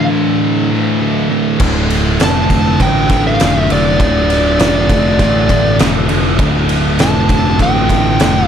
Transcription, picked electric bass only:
1.60 D1
2.21 F1
2.80 A1
3.41 F1
3.70 F1
4.00 D1
4.60 F1
5.20 A1
5.80 F1
6.10 F1
6.39 D1
7.00 F1
7.60 A1
8.20 F1

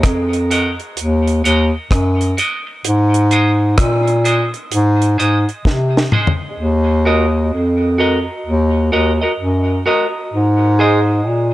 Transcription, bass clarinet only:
0.04 F2
0.98 D#2
1.45 D#2
1.92 F#2
2.86 G#2
3.78 A#2
4.73 G#2
5.20 G#2
5.66 C3
6.59 D#2
7.53 F2
8.47 D#2
8.93 D#2
9.40 F#2
10.34 G#2
11.28 A#2

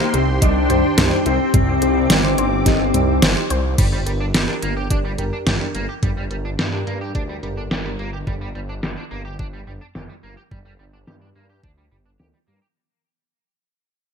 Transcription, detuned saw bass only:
0.14 C2
0.42 C2
0.70 C2
0.98 C2
1.26 C2
1.54 C2
1.82 C2
2.10 G1
2.38 G1
2.66 G1
2.94 C2
3.22 G1
3.50 C2
3.78 G1
4.07 G1
4.35 G1
4.63 G1
4.91 G1
5.19 G1
5.47 G1
5.75 G1
6.03 G1
6.31 G1
6.59 G2
6.87 G2
7.15 D2
7.43 G1
7.71 G1
7.99 G1
8.27 G1
8.55 G1
8.83 G1
9.11 G1
9.39 G1
9.67 G1
9.95 G1
10.24 G1
10.52 G1
10.80 G1
11.08 G2
11.36 G2
11.63 D2
11.92 G1
12.20 D2
12.48 G2

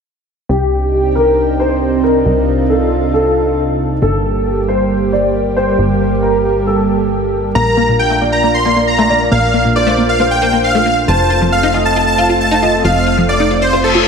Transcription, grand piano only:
0.49 G4
1.15 A#4
1.60 C5
2.04 A#4
2.70 A4
3.14 A4
4.02 A4
4.68 C5
5.13 D5
5.56 C5
6.23 A#4
6.67 A4
7.55 A#4
8.21 D5
8.65 D5
9.09 D5
9.76 C5
10.20 C5
11.08 C5
11.74 D#5
12.18 F5
12.63 D#5
13.29 D5
13.73 C5

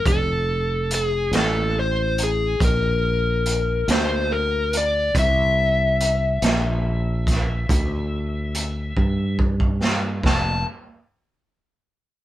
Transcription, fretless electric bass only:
0.05 F1
1.32 A1
2.60 A#1
3.88 D2
5.15 C2
6.42 A#1
7.69 D2
8.97 G2
10.24 F1

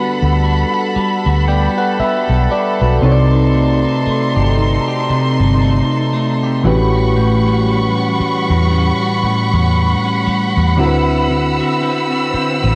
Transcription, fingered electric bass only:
0.22 D2
0.96 muted fingered electric bass stroke
1.26 D2
1.99 muted fingered electric bass stroke
2.29 B1
2.81 B1
3.03 C2
4.07 muted fingered electric bass stroke
4.36 G1
5.10 muted fingered electric bass stroke
5.40 G1
6.65 A1
8.20 muted fingered electric bass stroke
8.50 E2
9.23 muted fingered electric bass stroke
9.53 E2
10.27 muted fingered electric bass stroke
10.57 E2
10.79 D2
12.34 muted fingered electric bass stroke
12.64 A1

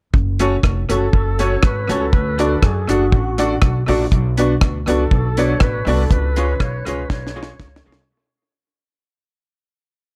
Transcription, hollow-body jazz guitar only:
0.40 A3 C#4 F#4
0.89 A3 C#4 F#4
1.39 A3 C#4 F#4
1.89 A3 C#4 F#4
2.38 A3 D4 F#4
2.89 A3 D4 F#4
3.38 A3 D4 F#4
3.88 A3 D4 F#4
4.38 B3 D4 F#4
4.87 B3 D4 F#4
5.38 B3 D4 F#4
5.87 B3 D4 F#4
6.37 G#3 C#4 F4
6.86 G#3 C#4 F4
7.36 G#3 C#4 F4
7.86 G#3 C#4 F4

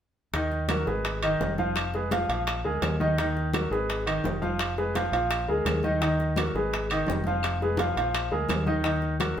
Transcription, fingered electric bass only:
0.33 D#2
0.87 G#1
1.40 F1
2.29 A#1
2.64 D2
2.82 D#2
3.71 G#1
4.24 F1
5.12 A#1
5.48 D2
5.65 D#2
6.54 G#1
7.08 F1
7.96 A#1
8.31 D2
8.50 D#2

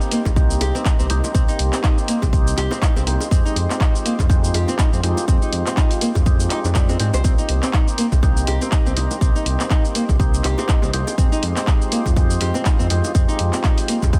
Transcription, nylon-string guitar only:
0.12 A#3
0.61 G4
0.75 C4
0.85 D#4
0.99 C4
1.34 C4
1.48 D#4
1.73 C4
1.84 D#4
2.08 A#3
2.58 G4
2.71 C4
2.82 D#4
2.96 C4
3.32 C4
3.45 D#4
3.70 C4
3.81 D#4
4.05 A#3
4.54 G4
4.69 C4
4.79 D#4
4.93 C4
5.28 C4
5.42 D#4
5.67 C4
5.77 D#4
6.02 A#3
6.51 D#4
6.75 G3
6.89 C4
7.00 C4
7.14 C5
7.24 C4
7.38 D#4
7.63 C4
7.74 D#4
7.98 A#3
8.48 G4
8.62 C4
8.72 D#4
8.86 C4
9.21 C4
9.36 D#4
9.60 C4
9.71 D#4
9.95 A#3
10.44 G4
10.58 C4
10.69 D#4
10.83 C4
11.18 C4
11.32 D#4
11.57 C4
11.67 D#4
11.92 A#3
12.41 G4
12.55 C4
12.66 D#4
12.79 C4
13.15 C4
13.28 D#4
13.53 C4
13.64 D#4
13.89 A#3

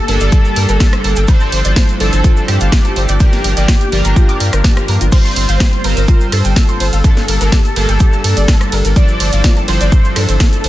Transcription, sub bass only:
0.08 G1
0.21 G1
0.56 G2
0.69 G1
1.04 G1
1.17 G1
1.52 G1
1.65 G1
2.00 G1
2.13 G1
2.48 G2
2.61 G1
2.96 G1
3.09 G1
3.44 G1
3.57 G1
3.92 G1
4.05 G1
4.40 G2
4.53 G1
4.88 G2
5.01 G1
5.36 G1
5.49 G1
5.84 G1
5.97 G1
6.32 G2
6.45 G1
6.80 G1
6.93 G1
7.28 G1
7.41 G1
7.76 G1
7.89 G1
8.24 G2
8.37 G1
8.72 G1
8.85 G1
9.20 G1
9.33 G1
9.68 G1
9.81 G1
10.16 G2
10.29 G1
10.64 G1

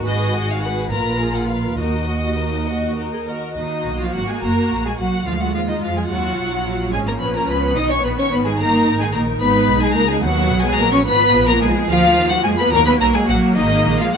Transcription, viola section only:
Already playing: F#4
0.92 F4
1.79 F#4
2.67 F#4
3.13 G#4
3.27 A#4
3.57 A#3 F#4
5.27 G#3 F4
6.10 F#3
6.93 F3 C#4
7.76 D#3 B3
8.58 D#4
9.40 G#3 D#4
10.23 F#3 B3
11.06 F3 B3
11.89 F3 A#3
12.73 F#3
13.57 G#3

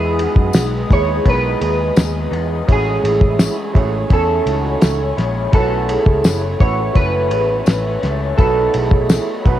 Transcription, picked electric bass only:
Already playing: E2
0.35 F#2
0.54 B1
0.90 D#2
1.25 B1
1.61 D#2
1.97 D#2
2.31 E2
2.68 A1
3.04 A1
3.75 A1
4.10 E2
4.46 C#2
4.83 C#2
5.18 A#1
5.53 B1
6.06 C#2
6.26 F#1
6.60 A1
6.95 F#1
7.32 A1
7.67 A1
8.03 C#2
8.38 B1
8.75 B1
9.45 B1

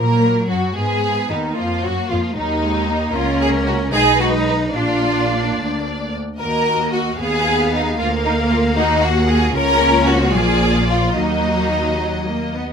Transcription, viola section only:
Already playing: A#3
0.50 F#3
0.76 G#3
1.30 D#3
1.57 F3
1.83 F#3
2.10 F3
2.37 D#3
3.15 A#3 C#4
3.94 G#3 D#4
4.75 A#3 D4
6.38 A#3 F#4
7.19 B3 G#4
7.99 A#3 A#4
8.77 F#4
9.54 A#3 F4
10.34 A#3
11.15 A#3 F#4
12.00 F#3
12.28 A#3
12.57 B3

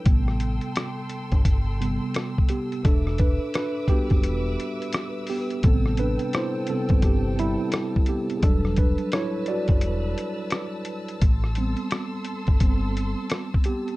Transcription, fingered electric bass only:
0.06 A1
1.32 G1
2.85 E1
4.11 F#1
4.25 E1
5.64 A1
6.90 G1
8.43 E1
9.69 F#1
9.82 E1
11.22 A1
12.48 G1

